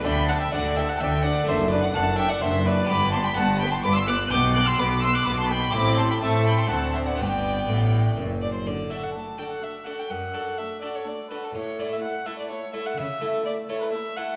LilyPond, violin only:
\new Staff \with { instrumentName = "Violin" } { \time 3/4 \key g \major \tempo 4 = 126 g''8 fis''16 e''16 d''8 e''16 fis''16 e''8 d''8 | c''8 b'16 d''16 fis''8 e''16 d''16 c''8 b'8 | b''8 a''16 g''16 fis''8 g''16 a''16 b''16 c'''16 d'''8 | d'''8 d'''16 c'''16 b''8 c'''16 d'''16 b''16 a''16 g''8 |
b''8 a''16 g''16 e''8 g''16 a''16 fis''8 c''16 d''16 | d''2 r8 d''16 c''16 | \key d \major d''8 e''16 fis''16 a''8 g''16 fis''16 e''8 fis''16 g''16 | fis''4 e''8 d''16 cis''16 d''8 b'16 a'16 |
cis''8 d''16 e''16 fis''8 e''16 d''16 cis''8 e''16 fis''16 | e''4 d''8 cis''16 b'16 e''8 fis''8 | }